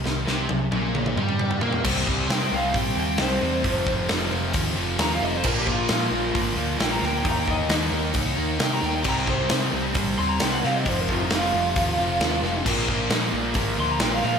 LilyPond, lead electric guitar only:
\new Staff \with { instrumentName = "Lead electric guitar" } { \time 4/4 \key c \minor \tempo 4 = 133 r1 | r4 g''8 f''8 g''8 g''8 c''4~ | c''4 r2 bes''16 f''16 ees''16 c''16 | bes'16 g'16 f'8 f'4 r4 g''16 bes''16 g''16 g''16 |
bes''16 g''16 ees''8 r2 g''16 bes''16 g''16 g''16 | bes''16 g''16 c''8 r4. c'''16 bes''16 g''16 fis''16 f''16 ees''16 | c''16 bes'16 f'16 ees'16 f'2. | r2 r8 c'''16 bes''16 g''16 f''16 f''16 r16 | }